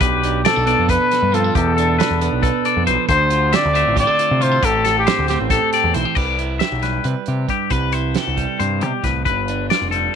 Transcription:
Already playing: D4 B4
0.00 B1 B2 G4 B4, kick, closed hi-hat
0.23 D4, closed hi-hat
0.45 C4 A4 D5, snare, closed hi-hat
0.56 B1 D4
0.66 B3 D4 D5, closed hi-hat
0.79 F2
0.88 A4 B4, kick, closed hi-hat
1.11 A4, snare, closed hi-hat
1.23 G2
1.32 F3 C4 F4 A4, closed hi-hat
1.44 D4
1.55 E2 B2 G4 A4, kick, closed hi-hat
1.77 D4 A4, closed hi-hat
1.99 D4 B4, snare, closed hi-hat
2.11 E2
2.21 B3 D4, closed hi-hat
2.33 B1
2.43 A4 B4, kick, closed hi-hat
2.65 A4 D5, closed hi-hat
2.77 F2
2.86 B1 F3 B4 C5, closed hi-hat
3.09 D2 D3 C5, kick, closed hi-hat
3.30 F4, closed hi-hat
3.52 C4 D5 E5, snare, closed hi-hat
3.65 D2
3.73 A3 F4 E5, closed hi-hat
3.87 A1
3.96 G4 C5 D5, kick, closed hi-hat
4.07 A4
4.19 F4, closed hi-hat
4.31 C3
4.40 A2 F4 G4 C5, closed hi-hat
4.52 A4
4.63 A1 A2 G4 A4, kick, closed hi-hat
4.84 G4 A4, snare, closed hi-hat
4.98 G4
5.07 C4 C5, snare, closed hi-hat
5.19 D2
5.28 A3 C4 G4, snare, closed hi-hat
5.40 A1
5.50 G4 A4, kick, closed hi-hat
5.73 G4 D5, closed hi-hat
5.84 E2
5.94 B1 E3 E4 C5, closed hi-hat
6.05 G4
6.15 C2 B4 D5, kick, crash
6.38 E4, closed hi-hat
6.59 G4 E5, snare, closed hi-hat
6.72 B1
6.82 G3 B4, snare, closed hi-hat
7.04 C3 B4, closed hi-hat
7.26 C3 G4, closed hi-hat
7.49 G2 G4, kick, closed hi-hat
7.70 C2 C3 B4, kick, closed hi-hat
7.92 E4 C5, closed hi-hat
8.14 G4 A4, snare, closed hi-hat
8.28 C2
8.37 G3, kick, closed hi-hat
8.59 G2 C3 C5, closed hi-hat
8.80 B2 C3 G4, closed hi-hat
9.02 C2 A2 B4, kick, snare, closed hi-hat
9.25 G1 G2 B4, kick, closed hi-hat
9.48 D4, closed hi-hat
9.70 F4 D5, snare, closed hi-hat
9.81 F1
9.91 G3 A4, closed hi-hat

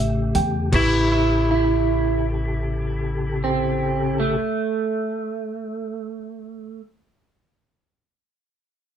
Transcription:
Already playing: A1 C#3 A3 G4 B4 E5 C#6
0.35 E2 G5, closed hi-hat
0.72 A1 C#3 E4 G4 A4 B4 E5 C#6, kick, crash
1.12 E4
1.51 E4
3.44 C4
4.20 A3

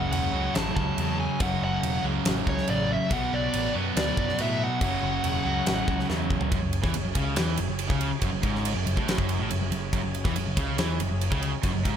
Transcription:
Already playing: F#2 C#3 F#3 G#3 C#4 F#5
0.12 E1 F#5, crash
0.32 C#2 C#3 F#3
0.37 F#2
0.55 A1 A5, snare, crash
0.76 C#2 A5, kick
0.97 E2 F#2 C#3 F#3, crash
1.20 G#5
1.39 F#1 F#2 C#3 F#3 F#5, kick, crash
1.62 F#1 F#5
1.83 E1, crash
2.04 C#2 F#2 C#3 F#3
2.25 A1, snare, crash
2.47 C#2 C#5, kick
2.58 snare
2.67 A1 F#2 C#3 F#3 D5, crash
2.93 E5
3.09 B1 B2 F#3 B3 F#4 D5 F#5, kick, crash
3.14 B3
3.34 B1 D5
3.54 A1, crash
3.74 F#2 B2 F#3 B3
3.96 D2 D5, snare, crash
4.17 F#2, kick
4.29 snare
4.38 A2 B2 F#3 B3 E5, crash
4.64 F#5
4.81 F#1 F#2 C#3 F#3 C#4 G#4, kick, crash
4.85 F#3
5.03 F#1
5.24 E1, crash
5.45 C#2 F#2 C#3 F#3
5.66 A1, snare, crash
5.88 C#2, kick
5.99 snare
6.09 E2 F#2 C#3 F#3, snare
6.30 kick
6.41 floor tom
6.51 F#1 F#2 F#3 C#4 G#4, kick, ride
6.63 F#1 F#2
6.73 ride
6.83 E2 E3, kick, snare
6.94 F#1 F#2, ride
7.05 F#1 F#2
7.15 C#2 C#3, kick, ride
7.36 E2 E3, snare, ride
7.57 F#1 F#2, ride
7.69 F#1 F#2
7.79 ride
7.90 C#2 C#3, kick
8.01 ride
8.10 muted overdriven electric guitar stroke, muted distorted electric guitar stroke, muted picked electric bass stroke
8.22 F#1 F#2, kick, ride
8.33 F#1 F#2
8.42 G#1 G#2, kick, ride
8.55 snare
8.65 ride
8.75 F#1 F#2
8.86 F#1 F#2, ride
8.97 A1 A2, kick
9.08 snare, ride
9.18 F#1 F#2, kick
9.29 ride
9.40 A1 A2
9.50 F#1 F#2, ride
9.61 F#1 F#2
9.71 F#1 F#2, ride
9.93 F#1 F#2, kick, ride
10.04 F#1 F#2
10.14 ride
10.25 E2 E3, kick, snare
10.36 F#1 F#2, ride
10.47 F#1 F#2
10.57 C#2 C#3, kick, ride
10.78 E2 E3, snare, ride
11.00 F#1 F#2, ride
11.11 F#1 F#2
11.21 ride
11.31 C#2 C#3, kick
11.42 ride
11.52 muted overdriven electric guitar stroke, muted picked electric bass stroke, muted distorted electric guitar stroke
11.63 F#1 F#2, kick, ride
11.75 F#1 F#2
11.85 G#1 G#2, kick, ride

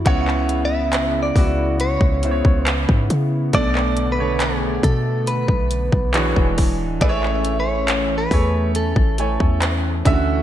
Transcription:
Already playing: E4
0.05 C#2 C#3 B3 E4 C#5 F#5, kick, closed hi-hat
0.28 clap
0.49 closed hi-hat
0.65 E5
0.93 clap, closed hi-hat
1.23 D5
1.36 C#2 C#3 B3 E4 F#4, kick, open hi-hat
1.80 C#5, closed hi-hat
2.01 C#2, kick
2.23 C#3 B3 E4 C5, closed hi-hat
2.31 C#5
2.45 C#2, kick
2.66 B4, clap, closed hi-hat
2.89 G#2, kick
3.10 C#3, closed hi-hat
3.53 B1 B2 D3 A3 B3 D4 D5, kick, closed hi-hat
3.75 clap
3.97 closed hi-hat
4.12 B4
4.18 B2 A3 D4 C#5
4.40 G#4, clap, closed hi-hat
4.83 B2 A4, kick, closed hi-hat
5.27 B4, closed hi-hat
5.48 B1, kick
5.71 closed hi-hat
5.92 B1, kick
6.14 E3 G#3 D4 F#4 G#4 C#5, clap, closed hi-hat
6.36 E1, kick
6.58 kick, open hi-hat
6.80 D1
7.01 A1 E3 A3 C#4 E4 G#4 B4 E5, kick, closed hi-hat
7.09 C#5
7.23 clap
7.45 closed hi-hat
7.60 C#5
7.88 clap, closed hi-hat
8.18 B4
8.31 E2 A3 E4 G#4 C#5, kick, open hi-hat
8.75 A4, closed hi-hat
8.96 A1, kick
9.18 A3 E4 C#5 G#5, closed hi-hat
9.40 E2, kick
9.62 clap, closed hi-hat
10.05 D2 D3 E3 A3 C#4 E4 F#4 E5, kick, closed hi-hat
10.13 F#4

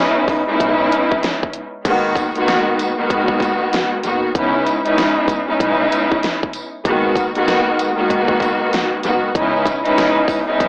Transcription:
Already playing: G#3 B3 C#4 D#4 E4
0.28 kick, open hi-hat
0.47 G#3 B3 C#4 D#4 E4
0.60 B1, kick, closed hi-hat
0.92 closed hi-hat
1.12 kick
1.23 snare, closed hi-hat
1.43 kick
1.53 closed hi-hat
1.84 G#1 D#3 G#3 A#3 B3 F#4, kick, closed hi-hat, crash
2.15 kick, closed hi-hat, tambourine
2.35 D#3 G#3 A#3 B3 F#4, closed hi-hat
2.48 snare, closed hi-hat
2.79 closed hi-hat, tambourine
2.96 D#3 G#3 A#3 B3 F#4
3.10 kick, closed hi-hat
3.28 kick
3.40 kick, closed hi-hat, tambourine
3.73 snare, closed hi-hat
4.03 F#1 D#3 G#3 A#3 B3 F#4, closed hi-hat, tambourine
4.34 C#2 G#3 B3 C#4 D#4 E4, kick, closed hi-hat
4.66 closed hi-hat, tambourine
4.83 G#3 B3 C#4 D#4 E4, closed hi-hat
4.98 snare, closed hi-hat
5.28 kick, closed hi-hat, tambourine
5.47 G#3 B3 C#4 D#4 E4
5.60 B1, kick, closed hi-hat
5.92 closed hi-hat, tambourine
6.12 kick
6.23 snare, closed hi-hat
6.43 kick
6.53 closed hi-hat, tambourine
6.84 G#1 D#3 G#3 A#3 B3 F#4, kick, closed hi-hat
7.16 kick, closed hi-hat, tambourine
7.35 D#3 G#3 A#3 B3 F#4, closed hi-hat
7.48 snare, closed hi-hat
7.79 closed hi-hat, tambourine
7.96 D#3 G#3 A#3 B3 F#4
8.10 kick, closed hi-hat
8.28 kick
8.40 kick, closed hi-hat, tambourine
8.73 snare, closed hi-hat
9.03 F#1 D#3 G#3 A#3 B3 F#4, closed hi-hat, tambourine
9.34 C#2 G#3 B3 C#4 D#4 E4, kick, closed hi-hat
9.66 kick, closed hi-hat, tambourine
9.84 G#3 B3 C#4 D#4 E4, closed hi-hat
9.98 snare, closed hi-hat
10.28 kick, open hi-hat, tambourine
10.47 G#3 B3 C#4 D#4 E4
10.60 B1, kick, closed hi-hat

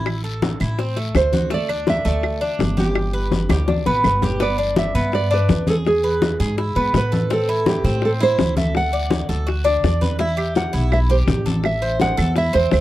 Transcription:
Already playing: A1 E4
0.06 high bongo, high conga, long guiro, claves
0.24 A4, high conga
0.42 high bongo, high conga, short guiro
0.60 A2 E4, high bongo, high conga, short guiro, claves
0.78 C4, high bongo, high conga, long guiro
0.96 A3, high bongo, high conga
1.15 D2 C5, high bongo, low bongo, high conga, short guiro, claves
1.32 F#4, high bongo, high conga, short guiro
1.50 A3 D5, high bongo, high conga, long guiro
1.69 D4, high conga, claves
1.87 E5, high bongo, high conga, short guiro
2.05 D2 A3 D5, high conga, short guiro
2.23 high bongo, high conga, long guiro, claves
2.41 D4, high conga
2.59 G1, high bongo, low bongo, high conga, short guiro
2.77 G4, high conga, short guiro
2.95 high bongo, high conga, long guiro, claves
3.13 B4, high conga
3.31 high bongo, high conga, short guiro
3.49 D2 G4, high bongo, high conga, short guiro, claves
3.60 F#4
3.68 D4, high bongo, high conga, long guiro
3.86 A1 B3, low bongo
4.04 G1 B4, low bongo, short guiro, claves
4.22 G4, low bongo, low conga, short guiro
4.40 B3 D5, high bongo, high conga, long guiro
4.58 D4, high conga
4.76 E5, high bongo, high conga, short guiro
4.95 G2 B3, high conga, short guiro
5.12 D5, high bongo, high conga, long guiro
5.31 D4 B4, high conga
5.49 E2, high bongo, low bongo, high conga, short guiro
5.67 G#4 A4, high conga, short guiro
5.85 G#4, high bongo, high conga, long guiro
6.04 B4, high conga
6.22 high bongo, high conga, short guiro
6.40 G#2 G#4, high bongo, high conga, short guiro
6.58 E4, high bongo, high conga, long guiro
6.76 G#2 B3, high bongo, high conga
6.94 A2 B4, high bongo, low bongo, high conga, short guiro
7.12 A4, high bongo, high conga, short guiro
7.30 C4 A4, high bongo, high conga, long guiro
7.49 E4, high conga
7.66 G4, high bongo, high conga, short guiro
7.84 A2 C4, high conga, short guiro
8.02 A4, high bongo, high conga, long guiro
8.20 E4 C5, high conga
8.38 D2, high bongo, low bongo, high conga, short guiro
8.57 A4 E5, high conga, short guiro
8.75 F#5, high bongo, high conga, long guiro
8.93 D5, high conga
9.10 high bongo, high conga, short guiro
9.29 D2 A4, high bongo, high conga, short guiro
9.47 F#4, high bongo, high conga, long guiro
9.64 D4, high bongo, high conga
9.83 E2 D5, high bongo, low bongo, short guiro
10.01 B4, high bongo, high conga, short guiro
10.19 E4 E5, high bongo, high conga, long guiro
10.37 G4, high conga, claves
10.55 F#5, high bongo, high conga, short guiro
10.73 B1 E4, high conga, short guiro
10.92 E5, high bongo, high conga, long guiro, claves
11.10 G4 C5, high conga
11.27 A1 D5, high bongo, low bongo, high conga, short guiro
11.46 A4, high conga, short guiro
11.63 E5, high bongo, long guiro, claves
11.82 C5, high conga
12.00 F#5, high bongo, high conga, short guiro
12.17 E2 A4, high bongo, high conga, short guiro, claves
12.36 E4 E5, high bongo, high conga, long guiro
12.53 E2 C4 C5, high bongo, high conga
12.71 D2 C5, high bongo, low bongo, high conga, short guiro, claves

